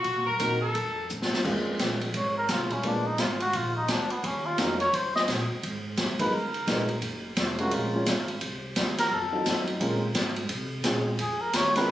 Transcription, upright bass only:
0.05 0.16 C3 medium
0.16 0.28 A#2 medium
0.28 0.39 F#2 medium
0.40 0.74 A#2 medium
0.75 1.09 F2 medium
1.11 1.30 A2 medium
1.32 muted upright bass stroke soft
1.45 1.78 F2 medium
1.80 2.13 A#1 medium
2.14 2.48 G#1 medium
2.49 2.61 C2 medium
2.61 2.72 A#1 medium
2.73 2.83 G#1 medium
2.84 3.18 A#1 medium
3.19 3.53 G#1 medium
3.54 3.88 A#1 medium
3.89 4.23 D2 medium
4.24 4.57 D#2 medium
4.58 4.92 F2 medium
4.93 5.27 F#2 medium
5.28 5.48 A#2 medium
5.50 muted upright bass stroke soft
5.63 5.97 G#2 medium
5.98 6.31 F#2 medium
6.33 6.66 C#2 medium
6.67 7.01 A#1 medium
7.02 7.36 F#1 medium
7.37 7.71 F1 medium
7.72 8.05 A#1 medium
8.07 8.40 G#1 loud
8.42 8.75 C2 medium
8.76 9.10 D#2 medium
9.11 9.45 F2 medium
9.46 9.80 F#2 medium
9.81 10.14 A#2 medium
10.15 10.49 G#2 medium
10.49 10.84 C3 medium
10.84 11.18 A#2 medium
11.19 11.53 F2 medium
11.54 11.88 D#2 loud

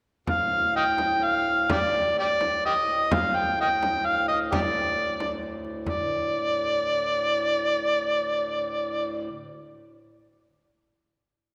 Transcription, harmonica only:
0.29 0.76 F5 medium
0.76 0.83 D#5 medium
0.76 1.25 G5 medium
1.24 1.70 F5 medium
1.71 1.78 G4 soft
1.71 2.15 D5 medium
2.19 2.27 G4 medium
2.19 2.63 D5 medium
2.66 2.74 G4 medium
2.66 3.14 D#5 medium
3.13 3.38 F5 medium
3.37 3.60 G5 medium
3.61 3.68 D#5 medium
3.61 4.07 G5 medium
4.06 4.28 F5 medium
4.29 4.39 D#5 medium
4.51 4.59 G4 soft
4.51 5.39 D5 medium
5.87 9.24 D5 medium

